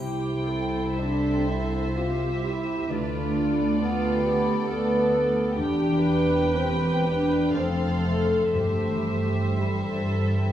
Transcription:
Already playing: C3 G3 C4 E4 G4 C5
0.00 C2 C3 E4 G4 C5 G5
0.30 G3
0.48 A4
0.64 C4
0.97 D4 E4 A4 E5
1.30 G4
1.48 E4
1.62 C5
1.95 F4 G4 E5
2.26 C5
2.43 E4
2.59 E4
2.89 D2 D3 D4 F4 B4 D5
3.20 D4
3.36 A4
3.50 B3
3.79 B3 F4
4.08 G4
4.24 G4
4.37 B4
4.67 B3 A4 F5
4.97 B4
5.26 F4
5.56 E1 E2 D4 G4 G5
5.88 E3
6.04 B4
6.20 C4
6.53 C4 E4 G4
6.87 G4
7.06 D4
7.20 C5
7.53 F1 F2 C4 A4 C5 F5
7.86 A3
8.05 A3
8.20 D4 A4
8.53 G1 G2 A3 G4 C5 E5
8.87 E3
9.22 G3
9.57 G3 E4 A4
9.94 C5
10.35 G4

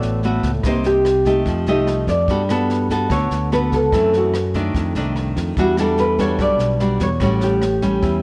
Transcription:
Already playing: A2 A3 B3 F#4 D5
0.02 A1, snare
0.23 A3 B3 F#4, snare
0.43 C#2, kick, snare
0.63 C2 C3 A#3 D#4 G4, kick, cross-stick, snare
0.68 C5
0.84 G4, snare
1.05 cross-stick, snare
1.25 A3 D#4 G4, kick, snare
1.46 F2 F3, kick, snare
1.66 C2 A3 D#4 G4 D#5, snare
1.87 cross-stick, snare
2.07 F2 D5, kick, snare
2.28 G2 G3 B3 F#4 A4, kick, snare
2.49 B3 F#4 A4, cross-stick, snare
2.70 snare
2.90 B3 F#4 A4, kick, snare
3.10 D2 D3 C#5, kick, cross-stick, snare
3.31 D2, snare
3.52 B3 F#4 A4 B4, snare
3.72 C#2 A4, kick, snare
3.92 F#2 E3 A3 C4, kick, cross-stick, snare
4.13 F#4, snare
4.34 cross-stick, snare
4.54 D#3 A3 D4, kick, snare
4.75 F2, kick, snare
4.95 C2 D#3 A3 D4, snare
5.16 cross-stick, snare
5.36 F2, kick, snare
5.57 E2 E3 G3 D4 F#4, kick, snare
5.77 G3 D4 F#4 A4, cross-stick, snare
5.98 B4, snare
6.18 G3 D4 F#4 C#5, kick, snare
6.39 B1 B2 D5, kick, cross-stick, snare
6.59 B1, snare
6.80 G3 D4 F#4, snare
7.00 E2 C#5, kick, snare
7.20 A1 A2 G3 C#4 F#4, kick, cross-stick, snare
7.41 G4, snare
7.62 cross-stick, snare
7.82 G3 C#4, kick, snare
8.02 E2 E3, kick, snare

